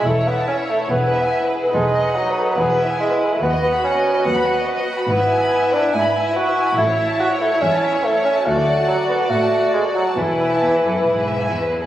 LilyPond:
<<
  \new Staff \with { instrumentName = "Violin section" } { \time 4/4 \key b \mixolydian \tempo 4 = 142 a'16 cis''16 e''16 a''16 e''16 cis''16 a'16 cis''16 gis'16 b'16 e''16 gis''16 e''16 b'16 gis'16 b'16 | a'16 b'16 dis''16 fis''16 dis''16 b'16 a'16 b'16 gis'16 b'16 e''16 gis''16 e''16 b'16 gis'16 b'16 | b'16 dis''16 fis''16 b''16 fis''16 dis''16 b'16 dis''16 fis''16 b''16 fis''16 dis''16 b'16 dis''16 fis''16 b''16 | \key e \mixolydian b'16 e''16 gis''16 b''16 gis''16 e''16 b'16 e''16 gis''16 b''16 gis''16 e''16 b'16 e''16 gis''16 b''16 |
a'16 cis''16 e''16 a''16 e''16 cis''16 a'16 cis''16 e''16 a''16 e''16 cis''16 a'16 cis''16 e''16 a''16 | a'16 d''16 fis''16 a''16 fis''16 d''16 a'16 d''16 fis''16 a''16 fis''16 d''16 a'16 d''16 fis''16 a''16 | a'16 b'16 e''16 a''16 e''16 b'16 a'16 b'16 gis'16 b'16 e''16 gis''16 e''16 b'16 gis'16 b'16 | }
  \new Staff \with { instrumentName = "Violin section" } { \time 4/4 \key b \mixolydian cis''2 b'2~ | b'1 | b'1~ | \key e \mixolydian b'1 |
cis''1 | d''1 | b'2.~ b'8 r8 | }
  \new Staff \with { instrumentName = "Viola section" } { \time 4/4 \key b \mixolydian e'1 | dis'2 e'2 | fis'1 | \key e \mixolydian e'1~ |
e'1 | fis'1 | e'2.~ e'8 r8 | }
  \new Staff \with { instrumentName = "Bassoon" } { \time 4/4 \key b \mixolydian a8 b8 cis'8 a8 b4. r8 | gis4 fis4 b4 gis8. a16 | b8 b8 cis'4 b4. r8 | \key e \mixolydian b4. d'8 e'4 fis'4 |
e'4 fis'8 e'8 cis'4 a8 cis'8 | a4 fis8 b8 a4 gis8 fis8 | e2. r4 | }
  \new Staff \with { instrumentName = "Cello section" } { \clef bass \time 4/4 \key b \mixolydian e,4 r4 e,4 r4 | e,4 r4 e,4 r4 | dis,4 r4 dis,4 r4 | \key e \mixolydian gis,4 r4 gis,4 r4 |
a,4 r4 e,4 r4 | d,4 r4 a,4 r4 | e,4 e,8 fis,8 gis,4 e,4 | }
  \new Staff \with { instrumentName = "Double bass section" } { \clef bass \time 4/4 \key b \mixolydian e,,4 r4 e,,4 r4 | e,,4 r4 e,,4 r4 | dis,4 r2. | \key e \mixolydian gis,,4 r2. |
a,,4 r2. | d,4 r2. | e,,4 r4 e,,4 r4 | }
>>